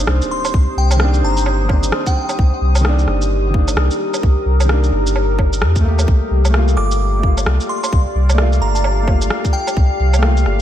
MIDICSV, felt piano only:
0, 0, Header, 1, 2, 480
1, 0, Start_track
1, 0, Tempo, 461538
1, 561, Time_signature, 4, 2, 24, 8
1, 11041, End_track
2, 0, Start_track
2, 0, Title_t, "Felt piano"
2, 0, Program_c, 0, 0
2, 0, Note_on_c, 0, 51, 73
2, 0, Note_on_c, 0, 58, 66
2, 0, Note_on_c, 0, 62, 87
2, 981, Note_off_c, 0, 51, 0
2, 997, Note_on_c, 0, 51, 86
2, 1016, Note_off_c, 0, 58, 0
2, 1036, Note_off_c, 0, 62, 0
2, 1039, Note_on_c, 0, 58, 81
2, 1081, Note_on_c, 0, 62, 97
2, 1699, Note_off_c, 0, 51, 0
2, 1715, Note_on_c, 0, 51, 76
2, 1736, Note_off_c, 0, 58, 0
2, 1751, Note_on_c, 0, 58, 72
2, 1758, Note_off_c, 0, 62, 0
2, 1799, Note_on_c, 0, 62, 86
2, 2905, Note_off_c, 0, 51, 0
2, 2921, Note_on_c, 0, 51, 85
2, 2933, Note_off_c, 0, 58, 0
2, 2957, Note_off_c, 0, 62, 0
2, 2960, Note_on_c, 0, 58, 78
2, 3006, Note_on_c, 0, 62, 96
2, 3625, Note_off_c, 0, 51, 0
2, 3641, Note_on_c, 0, 51, 79
2, 3657, Note_off_c, 0, 58, 0
2, 3680, Note_on_c, 0, 58, 71
2, 3681, Note_off_c, 0, 62, 0
2, 3725, Note_on_c, 0, 62, 83
2, 4821, Note_off_c, 0, 51, 0
2, 4837, Note_on_c, 0, 51, 85
2, 4858, Note_off_c, 0, 58, 0
2, 4878, Note_on_c, 0, 58, 78
2, 4880, Note_off_c, 0, 62, 0
2, 4921, Note_on_c, 0, 62, 90
2, 5556, Note_off_c, 0, 51, 0
2, 5577, Note_off_c, 0, 58, 0
2, 5598, Note_off_c, 0, 62, 0
2, 6037, Note_on_c, 0, 57, 98
2, 6075, Note_on_c, 0, 58, 90
2, 6118, Note_on_c, 0, 67, 104
2, 6745, Note_off_c, 0, 57, 0
2, 6761, Note_on_c, 0, 57, 85
2, 6775, Note_off_c, 0, 58, 0
2, 6797, Note_off_c, 0, 67, 0
2, 6802, Note_on_c, 0, 58, 81
2, 6845, Note_on_c, 0, 65, 93
2, 7464, Note_off_c, 0, 57, 0
2, 7480, Note_on_c, 0, 57, 77
2, 7499, Note_off_c, 0, 58, 0
2, 7520, Note_off_c, 0, 65, 0
2, 7522, Note_on_c, 0, 58, 70
2, 7564, Note_on_c, 0, 65, 85
2, 8660, Note_off_c, 0, 57, 0
2, 8675, Note_on_c, 0, 57, 82
2, 8699, Note_off_c, 0, 58, 0
2, 8716, Note_on_c, 0, 58, 81
2, 8720, Note_off_c, 0, 65, 0
2, 8759, Note_on_c, 0, 65, 93
2, 9374, Note_off_c, 0, 57, 0
2, 9389, Note_on_c, 0, 57, 79
2, 9416, Note_off_c, 0, 58, 0
2, 9434, Note_on_c, 0, 58, 70
2, 9437, Note_off_c, 0, 65, 0
2, 9472, Note_on_c, 0, 65, 86
2, 10577, Note_off_c, 0, 57, 0
2, 10593, Note_on_c, 0, 57, 86
2, 10615, Note_off_c, 0, 58, 0
2, 10634, Note_off_c, 0, 65, 0
2, 10637, Note_on_c, 0, 58, 81
2, 10679, Note_on_c, 0, 65, 92
2, 11041, Note_off_c, 0, 57, 0
2, 11041, Note_off_c, 0, 58, 0
2, 11041, Note_off_c, 0, 65, 0
2, 11041, End_track
0, 0, End_of_file